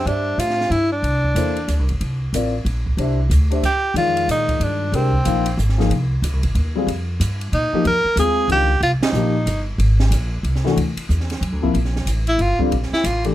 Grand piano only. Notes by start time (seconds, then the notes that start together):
0.06 D4 G4 C5 E5
1.36 A#3 E4 A4 C5
2.34 C4 F4 A#4 D5
2.98 D4 G4 C5 E5
3.51 D4 G4 C5 E5
3.95 D#3 G#3 F4 D5
4.93 G#3 D4 G4 A#4
5.25 F3 A#3 D#4 F4
5.78 F3 A#3 D#4 G#4
6.76 G3 C4 F4 G#4
7.73 F3 A#3 D#4 G4
8.18 G#3 C4 F4 G#4
8.49 D#3 G#3 D4 F4
9.14 F3 A#3 D#4 G4
10.64 E3 A3 D4 F#4
11.62 C3 F3 A#3 E4
12.59 D3 G3 C4 F4
13.24 E3 A3 D4 G4